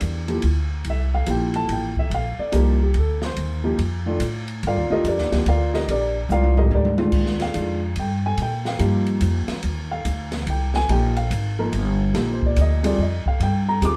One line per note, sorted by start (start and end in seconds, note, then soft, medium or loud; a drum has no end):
0.00 0.42 E2 medium
0.00 0.24 D4 medium
0.00 0.24 G4 medium
0.00 0.23 A4 medium
0.00 0.24 A#4 medium
0.00 hi-hat pedal medium
0.00 ride medium
0.28 0.41 F3 medium
0.28 0.42 A#3 medium
0.28 0.42 E4 medium
0.28 0.42 G4 medium
0.28 ride soft
0.42 0.84 D2 medium
0.42 ride medium
0.85 1.26 C2 medium
0.85 ride medium
0.90 1.14 E5 medium
1.14 1.28 F5 medium
1.26 1.68 A#1 medium
1.26 1.91 F3 medium
1.26 1.91 A#3 medium
1.26 1.91 E4 medium
1.26 1.91 G4 medium
1.26 1.55 G5 medium
1.26 hi-hat pedal soft
1.26 ride medium
1.54 1.69 A5 loud
1.54 ride soft
1.68 2.09 A1 medium
1.68 ride medium
1.73 1.98 G5 medium
1.96 2.12 E5 medium
1.96 kick soft
2.10 2.36 A#1 medium
2.10 ride medium
2.14 2.39 F5 loud
2.38 2.53 D5 medium
2.38 muted upright bass stroke soft
2.52 2.94 C2 medium
2.52 2.77 F3 medium
2.52 2.77 A#3 medium
2.52 2.77 D#4 medium
2.52 2.77 G4 medium
2.52 2.81 A#4 medium
2.52 hi-hat pedal medium
2.52 ride medium
2.83 2.96 G4 medium
2.94 3.35 D2 medium
2.94 ride medium
2.98 3.23 A4 medium
3.22 3.76 C5 medium
3.22 snare medium
3.37 3.77 D#2 medium
3.37 ride medium
3.64 3.77 F3 medium
3.64 3.77 A#3 medium
3.64 3.77 D#4 medium
3.64 3.78 G4 medium
3.78 4.19 F2 medium
3.78 ride medium
4.06 4.19 D#3 medium
4.06 4.19 A3 medium
4.06 4.19 D4 medium
4.06 4.19 F4 medium
4.20 4.61 A2 medium
4.20 hi-hat pedal medium
4.20 ride medium
4.48 ride medium
4.63 4.76 G2 medium
4.63 ride medium
4.67 4.89 F4 medium
4.67 4.91 A#4 medium
4.67 4.91 D5 medium
4.67 4.91 F5 medium
4.76 4.90 D#2 medium
4.90 5.03 D2 medium
4.90 5.03 D#3 medium
4.90 5.03 A3 medium
4.90 5.03 D4 medium
4.90 5.05 D#4 medium
4.90 5.03 F4 medium
4.90 5.05 G4 medium
4.90 5.05 A#4 medium
4.90 5.05 D#5 loud
5.04 5.19 F2 medium
5.04 5.30 G4 medium
5.04 5.33 A#4 medium
5.04 5.33 D5 medium
5.04 hi-hat pedal medium
5.04 ride medium
5.08 5.33 D4 medium
5.18 5.31 D#2 medium
5.18 snare soft
5.31 5.45 D2 medium
5.31 5.44 F3 medium
5.31 5.44 A#3 medium
5.31 5.44 D#4 medium
5.31 5.45 G4 medium
5.31 snare medium
5.31 ride medium
5.46 5.86 D2 medium
5.46 5.74 F4 medium
5.46 5.73 A#4 medium
5.46 5.74 D5 medium
5.46 5.74 F5 medium
5.46 ride medium
5.74 5.88 D#4 medium
5.74 5.88 G4 medium
5.74 5.88 A#4 medium
5.74 5.88 D#5 medium
5.74 snare soft
5.88 6.28 A#1 medium
5.88 6.16 D4 medium
5.88 6.16 G4 medium
5.88 6.16 A#4 medium
5.88 6.16 D5 medium
5.88 ride medium
6.29 6.70 C2 loud
6.29 6.58 F4 medium
6.29 6.57 A#4 medium
6.29 6.57 D5 medium
6.29 6.57 F5 loud
6.29 hi-hat pedal medium
6.29 high tom soft
6.44 high tom medium
6.57 6.72 D#4 medium
6.57 6.72 G4 medium
6.57 6.71 A#4 medium
6.57 6.71 D#5 medium
6.57 floor tom medium
6.71 7.11 D2 medium
6.71 6.90 D4 medium
6.71 6.90 G4 medium
6.71 6.90 A#4 medium
6.71 6.90 D5 medium
6.71 high tom medium
6.85 high tom medium
6.97 7.51 D#3 medium
6.97 7.51 G#3 medium
6.97 7.51 D4 medium
6.97 7.51 F4 medium
6.97 high tom loud
7.12 7.53 D#2 medium
7.12 kick medium
7.12 crash medium
7.26 snare soft
7.40 7.94 F5 medium
7.40 snare soft
7.40 ride medium
7.54 7.95 F2 medium
7.54 7.79 D#3 medium
7.54 7.79 G#3 medium
7.54 7.79 D4 medium
7.54 7.79 F4 medium
7.54 hi-hat pedal soft
7.54 ride medium
7.96 8.37 G2 medium
7.96 8.25 G5 medium
7.96 ride medium
8.26 8.39 G#5 loud
8.37 8.78 A#2 medium
8.37 ride medium
8.42 8.67 G5 medium
8.65 9.05 F5 medium
8.65 snare soft
8.79 9.20 G2 medium
8.79 9.43 F3 medium
8.79 9.43 A#3 medium
8.79 9.44 D#4 medium
8.79 9.44 G4 medium
8.79 hi-hat pedal medium
8.79 ride medium
9.06 ride medium
9.21 9.47 F2 medium
9.21 hi-hat pedal medium
9.21 ride medium
9.48 muted upright bass stroke soft
9.48 snare medium
9.48 ride medium
9.63 10.04 D#2 medium
9.63 ride medium
9.91 10.44 F5 medium
10.05 10.46 D2 medium
10.05 hi-hat pedal medium
10.05 ride medium
10.32 snare medium
10.32 ride medium
10.46 10.88 C2 medium
10.46 10.75 G5 medium
10.46 ride medium
10.74 10.89 G#5 loud
10.74 snare soft
10.89 11.30 A#1 medium
10.89 11.14 F3 medium
10.89 11.14 A#3 medium
10.89 11.14 D#4 medium
10.89 11.14 G4 medium
10.89 11.17 G5 medium
10.89 ride medium
11.17 11.56 F5 medium
11.17 ride medium
11.30 11.71 G#1 medium
11.30 hi-hat pedal medium
11.30 ride medium
11.59 11.72 F3 medium
11.59 11.72 A#3 medium
11.59 11.72 D#4 medium
11.59 11.72 A#4 medium
11.72 12.13 G1 medium
11.72 ride medium
12.14 12.55 A#1 medium
12.14 12.78 F3 medium
12.14 12.79 A#3 medium
12.14 12.79 D#4 medium
12.14 12.79 G4 medium
12.14 snare soft
12.14 ride medium
12.32 12.44 C5 medium
12.42 kick medium
12.46 12.58 D5 medium
12.56 12.97 D2 medium
12.56 hi-hat pedal medium
12.56 ride medium
12.61 12.86 D#5 medium
12.83 12.97 G3 medium
12.83 12.97 C4 medium
12.83 12.97 F4 medium
12.83 12.97 G#4 medium
12.83 12.99 D5 medium
12.83 ride medium
12.98 13.24 F2 medium
12.98 13.27 D#5 medium
13.26 13.41 F5 medium
13.26 muted upright bass stroke soft
13.26 kick medium
13.40 13.81 G2 medium
13.40 13.69 G5 medium
13.40 ride medium
13.69 13.83 A#5 loud
13.81 13.97 D#2 medium
13.81 13.97 C4 medium
13.81 13.97 F4 medium
13.81 13.97 G4 medium
13.81 13.97 G#4 medium
13.81 13.97 D6 loud
13.81 hi-hat pedal medium
13.81 ride medium